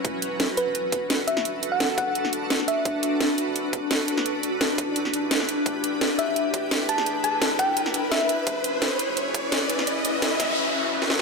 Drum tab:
HH |x-x-x-x-x-x-x-x-|x-x-x-x-x-x-x-x-|x-x-x-x-x-x-x-x-|x-x-x-x-x-x-x-x-|
SD |----o-------o--o|----o----o--oo--|----o-------o--o|----o----o--oo--|
BD |o---------o-----|------o---------|o---------o-----|------o---------|

HH |x-x-x-x-x-x-x-x-|x-x-x-x-x-x-x-x-|x-x-x-x-x-x-x-x-|x-x-x-x---------|
SD |----o-------o--o|----o----o--oo--|----o-------o--o|----o-o------oo-|
BD |o---------o-----|------o---------|o---------o-----|------o---------|